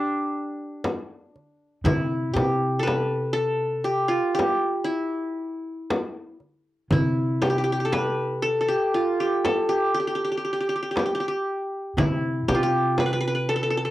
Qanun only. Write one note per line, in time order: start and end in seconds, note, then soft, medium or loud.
0.00 1.34 D4 medium
0.00 0.96 G4 medium
1.85 3.25 E4 medium
2.33 3.59 G4 medium
2.79 3.33 A4 medium
2.79 3.93 B4 medium
3.33 4.50 A4 medium
3.84 4.34 G4 medium
4.08 4.90 F4 medium
4.35 5.60 G4 medium
4.84 6.35 E4 medium
6.92 8.32 E4 medium
7.42 7.49 G4 medium
7.50 7.58 G4 medium
7.58 7.63 G4 medium
7.64 7.72 G4 medium
7.72 7.80 G4 medium
7.80 8.68 G4 medium
7.85 8.42 A4 medium
7.93 9.02 B4 medium
8.42 8.60 A4 medium
8.61 9.44 A4 medium
8.68 9.20 G4 medium
8.94 10.29 F4 medium
9.20 9.69 G4 medium
9.45 10.61 A4 medium
9.69 9.94 G4 medium
9.95 9.99 G4 medium
10.00 10.07 G4 medium
10.07 10.15 G4 medium
10.15 10.24 G4 medium
10.25 10.31 G4 medium
10.32 10.37 G4 soft
10.37 10.44 G4 soft
10.45 10.52 G4 soft
10.53 10.60 G4 medium
10.60 10.69 G4 soft
10.69 10.75 G4 medium
10.76 10.82 G4 soft
10.83 10.91 G4 soft
10.91 10.98 G4 soft
10.99 11.05 G4 medium
11.06 11.14 G4 soft
11.15 11.20 G4 medium
11.20 11.28 G4 medium
11.28 12.48 G4 medium
11.98 12.60 E4 medium
12.48 12.62 G4 medium
12.54 13.89 F4 medium
12.63 13.88 G4 medium
13.00 13.05 B4 medium
13.06 13.12 B4 medium
13.13 13.20 B4 medium
13.21 13.27 B4 medium
13.27 13.34 B4 medium
13.35 13.91 B4 medium
13.49 13.55 A4 medium
13.56 13.63 A4 medium
13.63 13.70 A4 medium
13.70 13.77 A4 medium
13.77 13.85 A4 medium
13.85 13.91 A4 medium